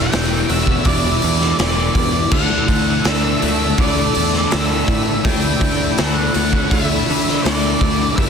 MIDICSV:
0, 0, Header, 1, 9, 480
1, 0, Start_track
1, 0, Tempo, 730816
1, 1530, Time_signature, 4, 2, 24, 8
1, 5447, End_track
2, 0, Start_track
2, 0, Title_t, "Lead electric guitar"
2, 0, Program_c, 0, 29
2, 0, Note_on_c, 0, 79, 103
2, 329, Note_on_c, 0, 76, 93
2, 344, Note_off_c, 0, 79, 0
2, 566, Note_off_c, 0, 76, 0
2, 569, Note_on_c, 0, 74, 94
2, 1050, Note_off_c, 0, 74, 0
2, 1058, Note_on_c, 0, 74, 90
2, 1531, Note_on_c, 0, 78, 102
2, 1548, Note_off_c, 0, 74, 0
2, 2009, Note_on_c, 0, 76, 94
2, 2024, Note_off_c, 0, 78, 0
2, 2493, Note_off_c, 0, 76, 0
2, 2496, Note_on_c, 0, 74, 96
2, 2973, Note_off_c, 0, 74, 0
2, 2975, Note_on_c, 0, 76, 85
2, 3444, Note_on_c, 0, 79, 105
2, 3467, Note_off_c, 0, 76, 0
2, 3931, Note_off_c, 0, 79, 0
2, 3934, Note_on_c, 0, 79, 91
2, 4006, Note_off_c, 0, 79, 0
2, 4006, Note_on_c, 0, 78, 91
2, 4402, Note_on_c, 0, 76, 101
2, 4426, Note_off_c, 0, 78, 0
2, 4880, Note_off_c, 0, 76, 0
2, 4883, Note_on_c, 0, 74, 86
2, 5357, Note_off_c, 0, 74, 0
2, 5360, Note_on_c, 0, 76, 90
2, 5447, Note_off_c, 0, 76, 0
2, 5447, End_track
3, 0, Start_track
3, 0, Title_t, "Analog synth pad"
3, 0, Program_c, 1, 89
3, 0, Note_on_c, 1, 67, 64
3, 0, Note_on_c, 1, 74, 81
3, 0, Note_on_c, 1, 88, 86
3, 1497, Note_off_c, 1, 67, 0
3, 1526, Note_on_c, 1, 81, 68
3, 3429, Note_off_c, 1, 81, 0
3, 3445, Note_on_c, 1, 83, 74
3, 5334, Note_off_c, 1, 74, 0
3, 5349, Note_off_c, 1, 83, 0
3, 5370, Note_on_c, 1, 70, 78
3, 5371, Note_on_c, 1, 67, 67
3, 5447, Note_off_c, 1, 67, 0
3, 5447, Note_off_c, 1, 70, 0
3, 5447, Note_off_c, 1, 88, 0
3, 5447, End_track
4, 0, Start_track
4, 0, Title_t, "Twelve-string acoustic guitar"
4, 0, Program_c, 2, 25
4, 0, Note_on_c, 2, 64, 78
4, 0, Note_on_c, 2, 67, 89
4, 77, Note_off_c, 2, 67, 0
4, 85, Note_on_c, 2, 67, 94
4, 324, Note_on_c, 2, 78, 69
4, 328, Note_off_c, 2, 67, 0
4, 344, Note_off_c, 2, 64, 0
4, 567, Note_off_c, 2, 78, 0
4, 570, Note_on_c, 2, 64, 89
4, 1049, Note_off_c, 2, 64, 0
4, 1049, Note_on_c, 2, 64, 85
4, 1291, Note_off_c, 2, 64, 0
4, 1291, Note_on_c, 2, 64, 77
4, 1526, Note_on_c, 2, 69, 94
4, 2010, Note_off_c, 2, 69, 0
4, 2010, Note_on_c, 2, 69, 84
4, 2251, Note_on_c, 2, 66, 77
4, 2271, Note_off_c, 2, 64, 0
4, 2490, Note_off_c, 2, 66, 0
4, 2496, Note_on_c, 2, 64, 88
4, 2974, Note_off_c, 2, 64, 0
4, 2974, Note_on_c, 2, 64, 81
4, 3214, Note_off_c, 2, 64, 0
4, 3214, Note_on_c, 2, 64, 76
4, 3451, Note_off_c, 2, 69, 0
4, 3451, Note_on_c, 2, 69, 90
4, 3927, Note_off_c, 2, 69, 0
4, 3935, Note_on_c, 2, 69, 91
4, 4168, Note_off_c, 2, 69, 0
4, 4171, Note_on_c, 2, 66, 78
4, 4191, Note_off_c, 2, 64, 0
4, 4411, Note_off_c, 2, 66, 0
4, 4412, Note_on_c, 2, 64, 97
4, 4901, Note_off_c, 2, 64, 0
4, 4901, Note_on_c, 2, 64, 86
4, 5135, Note_off_c, 2, 64, 0
4, 5135, Note_on_c, 2, 64, 78
4, 5382, Note_on_c, 2, 70, 88
4, 5402, Note_off_c, 2, 64, 0
4, 5447, Note_off_c, 2, 70, 0
4, 5447, End_track
5, 0, Start_track
5, 0, Title_t, "Clean electric guitar"
5, 0, Program_c, 3, 27
5, 0, Note_on_c, 3, 52, 85
5, 0, Note_on_c, 3, 59, 90
5, 0, Note_on_c, 3, 62, 56
5, 0, Note_on_c, 3, 67, 67
5, 0, Note_on_c, 3, 74, 78
5, 74, Note_off_c, 3, 59, 0
5, 82, Note_on_c, 3, 59, 81
5, 85, Note_off_c, 3, 67, 0
5, 87, Note_off_c, 3, 62, 0
5, 90, Note_on_c, 3, 62, 81
5, 93, Note_on_c, 3, 67, 86
5, 96, Note_off_c, 3, 74, 0
5, 98, Note_on_c, 3, 74, 87
5, 109, Note_off_c, 3, 52, 0
5, 322, Note_off_c, 3, 74, 0
5, 324, Note_on_c, 3, 74, 68
5, 329, Note_off_c, 3, 67, 0
5, 337, Note_on_c, 3, 67, 63
5, 341, Note_off_c, 3, 62, 0
5, 343, Note_on_c, 3, 62, 59
5, 564, Note_off_c, 3, 59, 0
5, 565, Note_on_c, 3, 52, 94
5, 570, Note_off_c, 3, 67, 0
5, 571, Note_on_c, 3, 59, 91
5, 574, Note_off_c, 3, 62, 0
5, 577, Note_on_c, 3, 62, 96
5, 578, Note_on_c, 3, 67, 101
5, 582, Note_off_c, 3, 74, 0
5, 585, Note_on_c, 3, 74, 105
5, 801, Note_off_c, 3, 74, 0
5, 804, Note_on_c, 3, 74, 74
5, 807, Note_off_c, 3, 67, 0
5, 815, Note_on_c, 3, 67, 71
5, 821, Note_off_c, 3, 62, 0
5, 824, Note_on_c, 3, 62, 60
5, 1036, Note_off_c, 3, 59, 0
5, 1044, Note_on_c, 3, 59, 73
5, 1048, Note_off_c, 3, 62, 0
5, 1050, Note_off_c, 3, 67, 0
5, 1051, Note_on_c, 3, 62, 78
5, 1058, Note_on_c, 3, 67, 78
5, 1061, Note_off_c, 3, 74, 0
5, 1064, Note_on_c, 3, 74, 100
5, 1070, Note_off_c, 3, 52, 0
5, 1284, Note_off_c, 3, 74, 0
5, 1287, Note_on_c, 3, 74, 70
5, 1289, Note_off_c, 3, 67, 0
5, 1297, Note_on_c, 3, 67, 68
5, 1300, Note_off_c, 3, 62, 0
5, 1303, Note_on_c, 3, 62, 62
5, 1512, Note_off_c, 3, 59, 0
5, 1519, Note_off_c, 3, 67, 0
5, 1523, Note_on_c, 3, 50, 90
5, 1528, Note_on_c, 3, 52, 82
5, 1532, Note_off_c, 3, 62, 0
5, 1534, Note_on_c, 3, 62, 99
5, 1535, Note_on_c, 3, 57, 94
5, 1538, Note_off_c, 3, 74, 0
5, 1539, Note_on_c, 3, 69, 93
5, 1540, Note_on_c, 3, 74, 103
5, 1759, Note_off_c, 3, 74, 0
5, 1761, Note_on_c, 3, 74, 72
5, 1767, Note_off_c, 3, 69, 0
5, 1769, Note_on_c, 3, 69, 66
5, 1773, Note_off_c, 3, 62, 0
5, 1775, Note_on_c, 3, 62, 66
5, 1778, Note_off_c, 3, 57, 0
5, 1780, Note_on_c, 3, 57, 57
5, 2000, Note_off_c, 3, 57, 0
5, 2003, Note_on_c, 3, 57, 74
5, 2007, Note_off_c, 3, 62, 0
5, 2010, Note_on_c, 3, 62, 78
5, 2015, Note_off_c, 3, 69, 0
5, 2018, Note_off_c, 3, 74, 0
5, 2018, Note_on_c, 3, 69, 74
5, 2021, Note_on_c, 3, 74, 87
5, 2030, Note_off_c, 3, 52, 0
5, 2237, Note_off_c, 3, 74, 0
5, 2240, Note_on_c, 3, 74, 71
5, 2243, Note_off_c, 3, 69, 0
5, 2246, Note_on_c, 3, 69, 67
5, 2251, Note_off_c, 3, 62, 0
5, 2252, Note_off_c, 3, 57, 0
5, 2253, Note_on_c, 3, 62, 62
5, 2255, Note_on_c, 3, 57, 64
5, 2485, Note_off_c, 3, 50, 0
5, 2485, Note_off_c, 3, 57, 0
5, 2487, Note_on_c, 3, 50, 96
5, 2492, Note_on_c, 3, 52, 96
5, 2493, Note_on_c, 3, 57, 99
5, 2494, Note_off_c, 3, 69, 0
5, 2497, Note_off_c, 3, 62, 0
5, 2500, Note_on_c, 3, 62, 103
5, 2501, Note_off_c, 3, 74, 0
5, 2501, Note_on_c, 3, 69, 101
5, 2504, Note_on_c, 3, 74, 104
5, 2720, Note_off_c, 3, 74, 0
5, 2722, Note_on_c, 3, 74, 79
5, 2724, Note_off_c, 3, 69, 0
5, 2732, Note_off_c, 3, 57, 0
5, 2732, Note_on_c, 3, 69, 67
5, 2733, Note_off_c, 3, 62, 0
5, 2736, Note_on_c, 3, 62, 67
5, 2740, Note_on_c, 3, 57, 59
5, 2953, Note_off_c, 3, 57, 0
5, 2961, Note_on_c, 3, 57, 82
5, 2963, Note_off_c, 3, 62, 0
5, 2963, Note_off_c, 3, 69, 0
5, 2965, Note_on_c, 3, 62, 86
5, 2968, Note_off_c, 3, 50, 0
5, 2971, Note_on_c, 3, 69, 90
5, 2975, Note_off_c, 3, 74, 0
5, 2977, Note_on_c, 3, 74, 93
5, 2985, Note_off_c, 3, 52, 0
5, 3198, Note_off_c, 3, 74, 0
5, 3201, Note_off_c, 3, 69, 0
5, 3201, Note_on_c, 3, 74, 72
5, 3209, Note_on_c, 3, 69, 73
5, 3211, Note_off_c, 3, 62, 0
5, 3214, Note_on_c, 3, 62, 64
5, 3215, Note_off_c, 3, 57, 0
5, 3223, Note_on_c, 3, 57, 65
5, 3444, Note_on_c, 3, 50, 86
5, 3446, Note_off_c, 3, 57, 0
5, 3450, Note_off_c, 3, 69, 0
5, 3450, Note_on_c, 3, 52, 92
5, 3453, Note_off_c, 3, 62, 0
5, 3454, Note_on_c, 3, 57, 90
5, 3456, Note_on_c, 3, 62, 101
5, 3458, Note_on_c, 3, 69, 103
5, 3459, Note_off_c, 3, 74, 0
5, 3461, Note_on_c, 3, 74, 89
5, 3685, Note_off_c, 3, 69, 0
5, 3686, Note_off_c, 3, 74, 0
5, 3688, Note_on_c, 3, 74, 79
5, 3692, Note_on_c, 3, 69, 80
5, 3697, Note_off_c, 3, 62, 0
5, 3699, Note_off_c, 3, 57, 0
5, 3700, Note_on_c, 3, 62, 69
5, 3707, Note_on_c, 3, 57, 69
5, 3919, Note_off_c, 3, 57, 0
5, 3927, Note_off_c, 3, 50, 0
5, 3927, Note_on_c, 3, 57, 70
5, 3931, Note_off_c, 3, 62, 0
5, 3934, Note_off_c, 3, 69, 0
5, 3934, Note_on_c, 3, 62, 78
5, 3942, Note_on_c, 3, 69, 74
5, 3944, Note_off_c, 3, 74, 0
5, 3947, Note_on_c, 3, 74, 90
5, 3954, Note_off_c, 3, 52, 0
5, 4170, Note_off_c, 3, 74, 0
5, 4173, Note_on_c, 3, 74, 68
5, 4174, Note_off_c, 3, 69, 0
5, 4182, Note_off_c, 3, 57, 0
5, 4182, Note_on_c, 3, 69, 61
5, 4183, Note_off_c, 3, 62, 0
5, 4185, Note_on_c, 3, 62, 61
5, 4190, Note_on_c, 3, 57, 51
5, 4413, Note_off_c, 3, 57, 0
5, 4415, Note_on_c, 3, 50, 99
5, 4416, Note_on_c, 3, 52, 106
5, 4419, Note_off_c, 3, 69, 0
5, 4421, Note_off_c, 3, 62, 0
5, 4421, Note_on_c, 3, 57, 97
5, 4423, Note_on_c, 3, 62, 105
5, 4427, Note_on_c, 3, 69, 114
5, 4429, Note_off_c, 3, 74, 0
5, 4431, Note_on_c, 3, 74, 112
5, 4650, Note_off_c, 3, 74, 0
5, 4652, Note_off_c, 3, 69, 0
5, 4652, Note_on_c, 3, 74, 74
5, 4660, Note_off_c, 3, 62, 0
5, 4660, Note_on_c, 3, 69, 79
5, 4662, Note_on_c, 3, 62, 67
5, 4664, Note_off_c, 3, 57, 0
5, 4672, Note_on_c, 3, 57, 59
5, 4884, Note_off_c, 3, 57, 0
5, 4892, Note_on_c, 3, 57, 85
5, 4893, Note_off_c, 3, 50, 0
5, 4895, Note_off_c, 3, 62, 0
5, 4897, Note_off_c, 3, 69, 0
5, 4898, Note_on_c, 3, 62, 86
5, 4905, Note_on_c, 3, 69, 78
5, 4907, Note_off_c, 3, 74, 0
5, 4910, Note_on_c, 3, 74, 93
5, 4918, Note_off_c, 3, 52, 0
5, 5129, Note_off_c, 3, 69, 0
5, 5132, Note_off_c, 3, 74, 0
5, 5135, Note_on_c, 3, 74, 74
5, 5137, Note_on_c, 3, 69, 77
5, 5139, Note_off_c, 3, 57, 0
5, 5141, Note_off_c, 3, 62, 0
5, 5143, Note_on_c, 3, 62, 67
5, 5147, Note_on_c, 3, 57, 57
5, 5360, Note_off_c, 3, 69, 0
5, 5365, Note_off_c, 3, 57, 0
5, 5365, Note_on_c, 3, 55, 94
5, 5370, Note_on_c, 3, 58, 90
5, 5372, Note_off_c, 3, 62, 0
5, 5375, Note_on_c, 3, 64, 98
5, 5379, Note_off_c, 3, 74, 0
5, 5380, Note_on_c, 3, 67, 91
5, 5382, Note_on_c, 3, 74, 99
5, 5447, Note_off_c, 3, 55, 0
5, 5447, Note_off_c, 3, 58, 0
5, 5447, Note_off_c, 3, 64, 0
5, 5447, Note_off_c, 3, 67, 0
5, 5447, Note_off_c, 3, 74, 0
5, 5447, End_track
6, 0, Start_track
6, 0, Title_t, "Distorted electric guitar"
6, 0, Program_c, 4, 30
6, 0, Note_on_c, 4, 40, 95
6, 0, Note_on_c, 4, 47, 96
6, 83, Note_off_c, 4, 40, 0
6, 90, Note_on_c, 4, 40, 84
6, 91, Note_off_c, 4, 47, 0
6, 98, Note_on_c, 4, 47, 83
6, 106, Note_on_c, 4, 52, 88
6, 561, Note_off_c, 4, 40, 0
6, 569, Note_off_c, 4, 47, 0
6, 569, Note_on_c, 4, 40, 96
6, 577, Note_on_c, 4, 47, 104
6, 584, Note_off_c, 4, 52, 0
6, 802, Note_on_c, 4, 52, 72
6, 816, Note_off_c, 4, 47, 0
6, 824, Note_on_c, 4, 47, 57
6, 1037, Note_off_c, 4, 40, 0
6, 1045, Note_on_c, 4, 40, 81
6, 1049, Note_off_c, 4, 47, 0
6, 1057, Note_on_c, 4, 47, 82
6, 1060, Note_off_c, 4, 52, 0
6, 1063, Note_on_c, 4, 52, 79
6, 1513, Note_off_c, 4, 40, 0
6, 1518, Note_off_c, 4, 47, 0
6, 1527, Note_off_c, 4, 52, 0
6, 2009, Note_on_c, 4, 50, 73
6, 2480, Note_off_c, 4, 50, 0
6, 2973, Note_on_c, 4, 50, 70
6, 2992, Note_on_c, 4, 62, 81
6, 3438, Note_off_c, 4, 50, 0
6, 3461, Note_off_c, 4, 62, 0
6, 3920, Note_on_c, 4, 50, 77
6, 4396, Note_off_c, 4, 50, 0
6, 4885, Note_on_c, 4, 50, 75
6, 5354, Note_off_c, 4, 50, 0
6, 5365, Note_on_c, 4, 43, 92
6, 5372, Note_on_c, 4, 50, 106
6, 5447, Note_off_c, 4, 43, 0
6, 5447, Note_off_c, 4, 50, 0
6, 5447, End_track
7, 0, Start_track
7, 0, Title_t, "Overdriven electric guitar"
7, 0, Program_c, 5, 29
7, 0, Note_on_c, 5, 40, 84
7, 0, Note_on_c, 5, 47, 100
7, 309, Note_off_c, 5, 40, 0
7, 315, Note_off_c, 5, 47, 0
7, 321, Note_on_c, 5, 52, 95
7, 330, Note_on_c, 5, 47, 75
7, 338, Note_on_c, 5, 40, 72
7, 1512, Note_off_c, 5, 47, 0
7, 1519, Note_off_c, 5, 40, 0
7, 1521, Note_off_c, 5, 52, 0
7, 2254, Note_on_c, 5, 50, 69
7, 3429, Note_off_c, 5, 50, 0
7, 4185, Note_on_c, 5, 50, 66
7, 5364, Note_off_c, 5, 50, 0
7, 5367, Note_on_c, 5, 43, 100
7, 5377, Note_on_c, 5, 50, 94
7, 5447, Note_off_c, 5, 43, 0
7, 5447, Note_off_c, 5, 50, 0
7, 5447, End_track
8, 0, Start_track
8, 0, Title_t, "Picked electric bass"
8, 0, Program_c, 6, 34
8, 93, Note_on_c, 6, 28, 95
8, 281, Note_off_c, 6, 28, 0
8, 324, Note_on_c, 6, 28, 100
8, 516, Note_off_c, 6, 28, 0
8, 560, Note_on_c, 6, 28, 94
8, 753, Note_off_c, 6, 28, 0
8, 812, Note_on_c, 6, 40, 79
8, 1000, Note_off_c, 6, 40, 0
8, 1047, Note_on_c, 6, 28, 88
8, 1237, Note_off_c, 6, 28, 0
8, 1280, Note_on_c, 6, 40, 87
8, 1473, Note_off_c, 6, 40, 0
8, 1527, Note_on_c, 6, 38, 88
8, 1717, Note_off_c, 6, 38, 0
8, 1764, Note_on_c, 6, 38, 86
8, 1955, Note_off_c, 6, 38, 0
8, 2005, Note_on_c, 6, 38, 95
8, 2196, Note_off_c, 6, 38, 0
8, 2250, Note_on_c, 6, 38, 99
8, 2439, Note_off_c, 6, 38, 0
8, 2485, Note_on_c, 6, 38, 91
8, 2676, Note_off_c, 6, 38, 0
8, 2735, Note_on_c, 6, 40, 86
8, 2922, Note_off_c, 6, 40, 0
8, 2977, Note_on_c, 6, 38, 94
8, 3163, Note_off_c, 6, 38, 0
8, 3207, Note_on_c, 6, 45, 86
8, 3397, Note_off_c, 6, 45, 0
8, 3450, Note_on_c, 6, 38, 91
8, 3639, Note_off_c, 6, 38, 0
8, 3690, Note_on_c, 6, 38, 94
8, 3879, Note_off_c, 6, 38, 0
8, 3939, Note_on_c, 6, 38, 98
8, 4125, Note_off_c, 6, 38, 0
8, 4174, Note_on_c, 6, 38, 97
8, 4362, Note_off_c, 6, 38, 0
8, 4411, Note_on_c, 6, 38, 97
8, 4600, Note_off_c, 6, 38, 0
8, 4664, Note_on_c, 6, 50, 87
8, 4848, Note_off_c, 6, 50, 0
8, 4895, Note_on_c, 6, 38, 90
8, 5082, Note_off_c, 6, 38, 0
8, 5130, Note_on_c, 6, 38, 94
8, 5320, Note_off_c, 6, 38, 0
8, 5378, Note_on_c, 6, 31, 98
8, 5447, Note_off_c, 6, 31, 0
8, 5447, End_track
9, 0, Start_track
9, 0, Title_t, "Drums"
9, 82, Note_on_c, 9, 46, 87
9, 89, Note_on_c, 9, 38, 116
9, 147, Note_off_c, 9, 46, 0
9, 154, Note_off_c, 9, 38, 0
9, 325, Note_on_c, 9, 46, 67
9, 390, Note_off_c, 9, 46, 0
9, 441, Note_on_c, 9, 36, 76
9, 507, Note_off_c, 9, 36, 0
9, 556, Note_on_c, 9, 46, 92
9, 560, Note_on_c, 9, 36, 127
9, 622, Note_off_c, 9, 46, 0
9, 626, Note_off_c, 9, 36, 0
9, 800, Note_on_c, 9, 46, 66
9, 866, Note_off_c, 9, 46, 0
9, 926, Note_on_c, 9, 38, 33
9, 991, Note_off_c, 9, 38, 0
9, 1042, Note_on_c, 9, 46, 92
9, 1050, Note_on_c, 9, 38, 113
9, 1108, Note_off_c, 9, 46, 0
9, 1115, Note_off_c, 9, 38, 0
9, 1280, Note_on_c, 9, 46, 63
9, 1281, Note_on_c, 9, 36, 82
9, 1346, Note_off_c, 9, 46, 0
9, 1347, Note_off_c, 9, 36, 0
9, 1520, Note_on_c, 9, 49, 111
9, 1522, Note_on_c, 9, 36, 122
9, 1586, Note_off_c, 9, 49, 0
9, 1588, Note_off_c, 9, 36, 0
9, 1762, Note_on_c, 9, 36, 98
9, 1764, Note_on_c, 9, 46, 66
9, 1828, Note_off_c, 9, 36, 0
9, 1830, Note_off_c, 9, 46, 0
9, 1999, Note_on_c, 9, 46, 81
9, 2006, Note_on_c, 9, 38, 116
9, 2064, Note_off_c, 9, 46, 0
9, 2072, Note_off_c, 9, 38, 0
9, 2246, Note_on_c, 9, 46, 62
9, 2312, Note_off_c, 9, 46, 0
9, 2481, Note_on_c, 9, 46, 86
9, 2484, Note_on_c, 9, 36, 123
9, 2547, Note_off_c, 9, 46, 0
9, 2550, Note_off_c, 9, 36, 0
9, 2722, Note_on_c, 9, 46, 60
9, 2788, Note_off_c, 9, 46, 0
9, 2847, Note_on_c, 9, 38, 34
9, 2913, Note_off_c, 9, 38, 0
9, 2962, Note_on_c, 9, 46, 78
9, 2970, Note_on_c, 9, 38, 124
9, 3028, Note_off_c, 9, 46, 0
9, 3035, Note_off_c, 9, 38, 0
9, 3205, Note_on_c, 9, 36, 89
9, 3207, Note_on_c, 9, 46, 64
9, 3271, Note_off_c, 9, 36, 0
9, 3273, Note_off_c, 9, 46, 0
9, 3447, Note_on_c, 9, 36, 120
9, 3451, Note_on_c, 9, 46, 89
9, 3513, Note_off_c, 9, 36, 0
9, 3517, Note_off_c, 9, 46, 0
9, 3686, Note_on_c, 9, 36, 98
9, 3686, Note_on_c, 9, 46, 66
9, 3752, Note_off_c, 9, 36, 0
9, 3752, Note_off_c, 9, 46, 0
9, 3924, Note_on_c, 9, 46, 86
9, 3931, Note_on_c, 9, 38, 116
9, 3990, Note_off_c, 9, 46, 0
9, 3997, Note_off_c, 9, 38, 0
9, 4165, Note_on_c, 9, 46, 63
9, 4231, Note_off_c, 9, 46, 0
9, 4288, Note_on_c, 9, 36, 85
9, 4353, Note_off_c, 9, 36, 0
9, 4409, Note_on_c, 9, 36, 127
9, 4413, Note_on_c, 9, 46, 92
9, 4474, Note_off_c, 9, 36, 0
9, 4478, Note_off_c, 9, 46, 0
9, 4653, Note_on_c, 9, 46, 70
9, 4718, Note_off_c, 9, 46, 0
9, 4783, Note_on_c, 9, 38, 36
9, 4848, Note_off_c, 9, 38, 0
9, 4895, Note_on_c, 9, 46, 95
9, 4902, Note_on_c, 9, 38, 114
9, 4960, Note_off_c, 9, 46, 0
9, 4968, Note_off_c, 9, 38, 0
9, 5130, Note_on_c, 9, 36, 84
9, 5131, Note_on_c, 9, 46, 74
9, 5196, Note_off_c, 9, 36, 0
9, 5197, Note_off_c, 9, 46, 0
9, 5372, Note_on_c, 9, 36, 127
9, 5375, Note_on_c, 9, 46, 92
9, 5438, Note_off_c, 9, 36, 0
9, 5441, Note_off_c, 9, 46, 0
9, 5447, End_track
0, 0, End_of_file